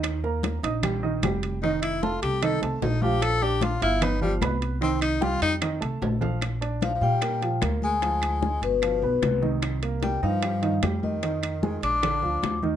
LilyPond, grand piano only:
\new Staff \with { instrumentName = "Grand piano" } { \time 4/4 \key bes \major \tempo 4 = 150 <ees ees' ees''>8 <bes bes' bes''>4 <ees' ees'' ees'''>8 <g g' g''>8 <ees ees' ees''>8 <g g' g''>4 | <ees ees' ees''>4 <a a' a''>4 <ees ees' ees''>8 <a a' a''>4 <f f' f''>8~ | <f f' f''>8 <d' d'' d'''>4 <f' f'' f'''>8 <b b' b''>8 <f f' f''>8 <b b' b''>4 | <ees ees' ees''>4 <g g' g''>4 <ees ees' ees''>8 <a a' a''>4 <f f' f''>8 |
r8 <d' d''>4 <f' f''>8 <bes bes'>8 <f f'>8 <bes bes'>4 | <f f'>4 <aes aes'>4 <f f'>8 <b b'>4 <ees ees'>8~ | <ees ees'>8 <bes bes'>4 <ees' ees''>8 <g g'>8 <ees ees'>8 <g g'>4 | <ees ees'>4 <aes aes'>4 <d d'>8 <f f'>4 <ees ees'>8 | }